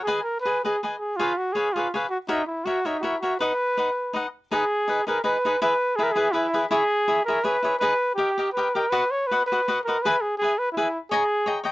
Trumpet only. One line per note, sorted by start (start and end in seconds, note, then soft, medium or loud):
0.04 0.22 G#4 medium
0.23 0.40 A#4 medium
0.41 0.61 B4 medium
0.64 0.81 G#4 medium
0.99 1.18 G#4 medium
1.16 1.39 F4 medium
1.38 1.54 F#4 medium
1.53 1.74 G#4 medium
1.73 1.91 F4 medium
2.10 2.18 F#4 medium
2.29 2.46 D#4 medium
2.47 2.66 E4 medium
2.65 2.88 F#4 medium
2.86 3.02 D#4 medium
3.01 3.20 E4 medium
3.01 3.04 F#4 medium
3.20 3.37 F#4 medium
3.40 4.30 B4 medium
4.53 5.05 G#4 medium
5.07 5.23 A#4 medium
5.25 5.59 B4 medium
5.63 5.98 B4 medium
5.96 6.05 G#4 medium
6.03 6.14 A#4 medium
6.12 6.34 G#4 medium
6.32 6.61 E4 medium
6.71 7.23 G#4 loud
7.25 7.46 A#4 medium
7.44 7.78 B4 medium
7.79 8.14 B4 medium
8.15 8.50 G4 medium
8.53 8.76 B4 medium
8.75 8.91 A#4 medium
8.90 9.13 B4 medium
9.11 9.29 C#5 medium
9.27 9.46 B4 medium
9.46 9.81 B4 medium
9.84 10.04 A#4 medium
10.02 10.23 B4 medium
10.21 10.37 G#4 medium
10.38 10.60 G#4 medium
10.59 10.72 B4 medium
10.72 10.99 E4 medium
11.11 11.62 G#4 loud